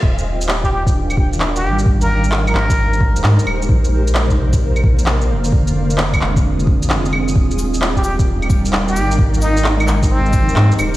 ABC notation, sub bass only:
X:1
M:4/4
L:1/16
Q:"Swing 16ths" 1/4=131
K:Eb
V:1 name="Sub bass" clef=bass
E,,,6 E,,,4 E,,,4 A,,,2- | A,,,6 A,,,4- A,,, E,,, A,, z E,,,2 | B,,,6 B,,,4 B,,,4 F,,,2- | F,,,6 F,,,4- F,,, C,, F,,,4 |
E,,,6 E,,,4 E,,,4 A,,,2- | A,,,6 A,,,4- A,,, E,,, A,, z E,,,2 |]